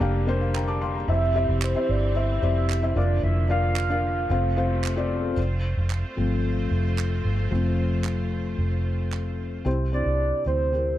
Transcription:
Already playing: string section D3 G3 A#3, felt piano D5 F5 A5 A#5
0.00 fingered electric bass F1, felt piano A#3 D4 G4 A#4 F5 G5
0.27 felt piano A#3 D4 G4 A#4 C5
0.41 felt piano F5
0.55 felt piano F5 G5 A#5, clap
0.68 felt piano A5 D6
0.81 felt piano F5 G5 C6
0.95 felt piano F5 A#5
1.08 fingered electric bass F1, string section E3 C4, felt piano C4 E4 G4 C5 E5, soft synth lead E5
1.34 felt piano C4 E4 G4 C5 E5
1.49 fingered electric bass F1
1.62 soft synth lead C5, clap
1.75 felt piano C4 E4 G4 C5 E5
1.89 fingered electric bass G1, soft synth lead D5
2.15 felt piano C4 E4 G4 C5 E5, soft synth lead E5
2.41 fingered electric bass F1, felt piano C4 E4 G4 C5 D5
2.57 soft synth lead E5
2.70 clap
2.82 felt piano C4 E4 G4 C5 E5
2.95 fingered electric bass F1, string section D3 F3 A#3, felt piano D4 F4 A#4 D5 F5, soft synth lead D5
3.23 fingered electric bass F1, soft synth lead E5
3.49 felt piano D4 F4 A#4 D5 F5, soft synth lead F5
3.76 clap
3.90 felt piano D4 F4 A#4 D5 F5
4.29 fingered electric bass F1, string section C3 A3, felt piano C4 F4 A4 C5 F5
4.56 felt piano C4 F4 A4 C5 F5
4.84 clap
4.96 felt piano C4 F4 A4 C5 D5
5.37 fingered electric bass F1, string section A3 C4 F4 C5
5.77 fingered electric bass F1
5.90 clap
6.17 fingered electric bass G1, felt piano F3 A3 C4
6.71 fingered electric bass F1
6.98 clap
7.25 fingered electric bass G1
7.51 fingered electric bass F1, felt piano F3 A3 C4
8.04 clap
8.58 fingered electric bass F1
9.12 clap
9.65 fingered electric bass C2, felt piano C3 C4 E4 G4 C5
9.92 felt piano C4 E4 G4 C5, soft synth lead D5
10.06 fingered electric bass C2
10.46 fingered electric bass D2, felt piano C4 E4 G4 C5, soft synth lead C5
10.73 felt piano C4 E4 G4 A#4

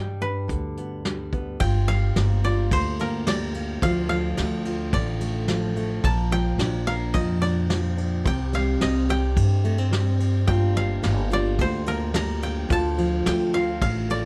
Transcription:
Already playing: upright bass G2, steel-string acoustic guitar G2 G3 D4 G4, koto D#5 F5 G5 A5
0.21 steel-string acoustic guitar D4, koto B4, closed hi-hat
0.48 upright bass D2, steel-string acoustic guitar D3, kick, closed hi-hat
0.77 steel-string acoustic guitar B3, closed hi-hat
1.05 steel-string acoustic guitar G3 D4, snare, closed hi-hat
1.33 steel-string acoustic guitar B3, kick, closed hi-hat
1.60 upright bass G1, steel-string acoustic guitar G2 F4, koto G5, kick, ride
1.88 steel-string acoustic guitar G3, koto F5, ride
2.16 upright bass G1, steel-string acoustic guitar A#3, snare, ride
2.44 steel-string acoustic guitar F4, koto D5, ride
2.71 upright bass D2, steel-string acoustic guitar D3, koto C5, kick, ride
2.99 steel-string acoustic guitar A#3, koto A#4, ride
3.27 steel-string acoustic guitar G3, koto D5, snare, ride
3.54 steel-string acoustic guitar A#3, ride
3.82 upright bass D2, steel-string acoustic guitar D3 F3 A3 D4 F4, koto F5, kick, ride
4.09 steel-string acoustic guitar F3, koto F5, ride
4.37 upright bass D2, steel-string acoustic guitar A3, snare, ride
4.65 steel-string acoustic guitar F4, ride
4.93 upright bass A1, steel-string acoustic guitar A2, koto D5, kick, ride
5.21 steel-string acoustic guitar A3, ride
5.48 steel-string acoustic guitar F3, snare, ride
5.76 steel-string acoustic guitar A3, ride
6.03 upright bass A#1, steel-string acoustic guitar A#2 A#4, koto A5, kick, ride
6.31 steel-string acoustic guitar F3, koto G5, ride
6.58 upright bass A#1, steel-string acoustic guitar D4, snare, ride
6.87 steel-string acoustic guitar A#4, koto F5, ride
7.14 upright bass F2, steel-string acoustic guitar F3, koto D#5, kick, ride
7.42 steel-string acoustic guitar D4, koto D5, ride
7.69 steel-string acoustic guitar F3, snare, ride
7.98 steel-string acoustic guitar D4, ride
8.24 upright bass C2, steel-string acoustic guitar C3 G4, koto G5, kick, ride
8.53 steel-string acoustic guitar G3, koto F5, ride
8.81 upright bass C2, steel-string acoustic guitar C4, koto D#5, snare, ride
9.09 steel-string acoustic guitar G4, koto G5, ride
9.36 steel-string acoustic guitar G2, upright bass G2, kick, ride
9.64 steel-string acoustic guitar A3, ride
9.78 steel-string acoustic guitar C4
9.91 steel-string acoustic guitar G3, snare, ride
10.20 steel-string acoustic guitar C4, ride
10.47 upright bass G1, steel-string acoustic guitar G2 G3 A#3 D4 F4, koto G5, kick, ride
10.75 steel-string acoustic guitar G3, koto F5, ride
11.03 upright bass G1, steel-string acoustic guitar A#3, snare, ride
11.30 steel-string acoustic guitar F4, koto D5, ride
11.58 upright bass D2, steel-string acoustic guitar D3, koto C5, kick, ride
11.86 steel-string acoustic guitar A#3, koto A#4, ride
12.14 steel-string acoustic guitar G3, koto A#5, snare, ride
12.42 steel-string acoustic guitar A#3, koto G5, ride
12.69 upright bass D2, steel-string acoustic guitar D3 F4, koto A5, kick, ride
12.98 steel-string acoustic guitar F3, ride
13.26 upright bass D2, steel-string acoustic guitar A3, koto G5, snare, ride
13.54 steel-string acoustic guitar F4, koto F5, ride
13.81 upright bass A1, steel-string acoustic guitar A2, koto F5, kick, ride
14.10 steel-string acoustic guitar A3, koto D5, ride

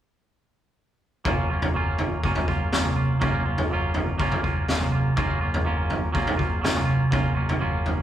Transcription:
1.25 picked electric bass F#1, clean electric guitar F#3 A#3 C#4 F4, kick, floor tom
1.50 picked electric bass F#1, clean electric guitar A#3 C#4 F4
1.62 floor tom
1.74 picked electric bass F#1, clean electric guitar F#3 A#3 C#4 F4
1.99 floor tom
2.23 picked electric bass F#1, clean electric guitar F#3 A#3 C#4 F4, kick
2.35 floor tom
2.48 picked electric bass F#1, clean electric guitar A#3 C#4 F4, kick
2.72 picked electric bass F#1, clean electric guitar F#3 A#3 C#4 F4, snare, floor tom
2.85 mid tom
2.96 clean electric guitar A#3 C#4 F4
3.20 picked electric bass F#1, clean electric guitar F#3 A#3 C#4 F4, kick, floor tom
3.46 picked electric bass F#1, clean electric guitar A#3 C#4 F4
3.58 floor tom
3.70 picked electric bass F#1, clean electric guitar F#3 A#3 C#4 F4
3.94 picked electric bass F#1, floor tom
4.18 picked electric bass F#1, clean electric guitar F#3 A#3 C#4 F4, kick
4.32 floor tom
4.43 picked electric bass F#1, clean electric guitar A#3 C#4 F4, kick
4.69 picked electric bass F#1, clean electric guitar F#3 A#3 C#4 F4, snare, floor tom
4.80 mid tom
4.92 clean electric guitar A#3 C#4 F4
5.16 picked electric bass F#1, clean electric guitar F#3 A#3 C#4 F4, kick, floor tom
5.41 picked electric bass F#1, clean electric guitar A#3 C#4 F4
5.54 floor tom
5.65 picked electric bass F#1, clean electric guitar F#3 A#3 C#4 F4
5.90 floor tom
6.13 picked electric bass F#1, clean electric guitar F#3 A#3 C#4 F4, kick
6.27 floor tom
6.37 picked electric bass F#1, clean electric guitar A#3 C#4 F4, kick
6.62 picked electric bass F#1, clean electric guitar F#3 A#3 C#4 F4, snare, floor tom
6.76 mid tom
6.85 clean electric guitar A#3 C#4 F4
7.11 picked electric bass F#1, clean electric guitar F#3 A#3 C#4 F4, kick, floor tom
7.35 picked electric bass F#1, clean electric guitar A#3 C#4 F4
7.49 floor tom
7.59 picked electric bass F#1, clean electric guitar F#3 A#3 C#4 F4
7.85 picked electric bass F#1, floor tom

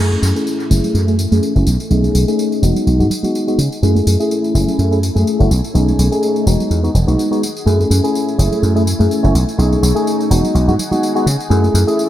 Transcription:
Already playing: tine electric piano A3
0.00 slap bass F#2, string machine A3 E4 G#5, tine electric piano C#4 E4 G#4
0.12 tambourine, high conga, shaker
0.22 slap bass F#2, tambourine
0.35 tine electric piano A3 C#4 E4 G#4, tambourine
0.47 tambourine, shaker
0.60 tambourine
0.70 slap bass F#1, tine electric piano A3 C#4 E4 G#4, tambourine, high conga
0.83 tambourine, low conga, shaker
0.94 slap bass F#2, tambourine
1.07 tine electric piano A3 C#4 E4 G#4, tambourine, shaker
1.19 tambourine
1.31 slap bass F#2, tine electric piano A3 C#4 E4 G#4, tambourine, high conga, shaker
1.43 tambourine
1.55 slap bass F#1, tine electric piano A3 C#4 E4 F#4, tambourine
1.66 slap bass B1, string machine D#4 C#5, tambourine
1.80 tambourine
1.90 slap bass B1, tine electric piano A3 C#4 D#4 G#4, tambourine
2.04 tambourine, high conga, shaker
2.15 slap bass B1, tambourine
2.27 tine electric piano A3 C#4 D#4 G#4, tambourine
2.39 tambourine, shaker
2.52 tambourine
2.62 slap bass E1, tine electric piano G#3 B3 D#4 F#4, string machine G#4 F#5, tambourine, high conga
2.75 tambourine, low conga, shaker
2.87 slap bass B1, tambourine
2.99 slap bass G#2, tine electric piano G#3 B3 D#4 F#4, tambourine
3.10 tambourine, low conga
3.22 tine electric piano G#3 B3 D#4 F#4, tambourine, high conga, low conga, shaker
3.35 tambourine, shaker
3.47 tine electric piano G#3 B3 D#4 F#4, tambourine, shaker
3.58 slap bass C#3, tambourine
3.72 tambourine
3.82 slap bass F#2, tine electric piano A3 C#4 E4 G#4, string machine A3 E4 G#5, tambourine
3.95 tambourine, high conga, shaker
4.07 slap bass F#2, tambourine
4.19 tine electric piano A3 C#4 E4 G#4, tambourine
4.31 tambourine, shaker
4.44 tambourine
4.54 slap bass F#1, tine electric piano A3 C#4 E4 G#4, tambourine, high conga
4.67 tambourine, low conga, shaker
4.79 slap bass F#2, tambourine
4.91 tine electric piano A3 C#4 E4 G#4, tambourine, shaker
5.03 tambourine
5.15 slap bass F#2, tine electric piano A3 C#4 E4 G#4, tambourine, high conga, shaker
5.27 tambourine
5.39 slap bass F#1, tine electric piano A3 C#4 E4 F#4, tambourine
5.50 slap bass B1, string machine D#4 C#5, tambourine
5.64 tambourine
5.74 slap bass B1, tine electric piano A3 C#4 D#4 G#4, tambourine
5.88 tambourine, high conga, shaker
5.99 slap bass B1, tambourine
6.11 tine electric piano A3 C#4 D#4 G#4, tambourine
6.23 tambourine, shaker
6.36 tambourine
6.46 slap bass E1, tine electric piano G#3 B3 D#4 F#4, string machine G#4 F#5, tambourine, high conga
6.60 tambourine, low conga, shaker
6.71 slap bass E2, tambourine
6.83 tine electric piano G#3 B3 D#4 F#4, tambourine, shaker
6.94 slap bass E1, tambourine, low conga
7.07 slap bass B1, tine electric piano G#3 B3 D#4 F#4, tambourine, high conga, low conga, shaker
7.19 tambourine, shaker
7.31 tine electric piano G#3 B3 D#4 F#4, tambourine, shaker
7.43 tambourine
7.56 tambourine, shaker
7.66 slap bass F#2, tine electric piano A3 C#4 E4 G#4, string machine A3 E4 G#5, tambourine
7.80 tambourine, high conga, shaker
7.90 slap bass F#2, tambourine
8.03 tine electric piano A3 C#4 E4 G#4, tambourine
8.15 tambourine, shaker
8.28 tambourine
8.38 slap bass F#1, tine electric piano A3 C#4 E4 G#4, tambourine, high conga
8.52 tambourine, low conga, shaker
8.63 slap bass F#2, tambourine, shaker
8.75 tine electric piano A3 C#4 E4 G#4, tambourine
8.87 tambourine
8.99 slap bass F#2, tine electric piano A3 C#4 E4 G#4, tambourine, high conga, shaker
9.11 tambourine
9.23 slap bass F#1, tine electric piano A3 C#4 E4 F#4, tambourine
9.34 slap bass B1, string machine D#4 C#5, tambourine
9.47 tambourine, shaker
9.58 slap bass B1, tine electric piano A3 C#4 D#4 G#4, tambourine
9.72 tambourine, high conga, shaker
9.82 slap bass B1, tambourine
9.95 tine electric piano A3 C#4 D#4 G#4, tambourine
10.07 tambourine, shaker
10.20 tambourine
10.30 slap bass E1, tine electric piano G#3 B3 D#4 F#4, string machine G#4 F#5, tambourine, high conga
10.43 tambourine, low conga, shaker
10.55 slap bass B1, tambourine
10.67 slap bass G#2, tine electric piano G#3 B3 D#4 F#4, tambourine, shaker
10.79 tambourine, low conga
10.91 tine electric piano G#3 B3 D#4 F#4, tambourine, high conga, low conga, shaker
11.02 tambourine, shaker
11.15 tine electric piano G#3 B3 D#4 F#4, tambourine, shaker
11.26 slap bass C#3, tambourine
11.40 tambourine
11.50 slap bass F#2, tine electric piano A3 C#4 E4 G#4, string machine A3 E4 G#5, tambourine
11.64 tambourine, high conga, shaker
11.74 slap bass F#2, tambourine
11.87 tine electric piano A3 C#4 E4 G#4, tambourine
11.99 tambourine, shaker

